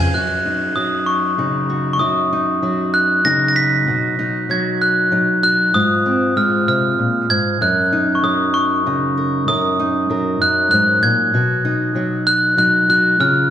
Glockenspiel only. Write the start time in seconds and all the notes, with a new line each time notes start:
Already playing: G#6
0.14 F#6
0.76 D#6
1.06 C#6
1.93 C#6
1.99 D#6
2.94 F#6
3.25 A#6
3.48 A#6
3.56 B6
4.51 G#6
4.82 F#6
5.43 F#6
5.74 D#6
6.37 F6
6.68 F6
7.30 G#6
7.62 F#6
8.15 C#6
8.24 D#6
8.54 C#6
9.48 D#6
10.42 F#6
10.71 F#6
11.03 G#6
12.27 F#6
12.59 F#6
12.90 F#6
13.21 F6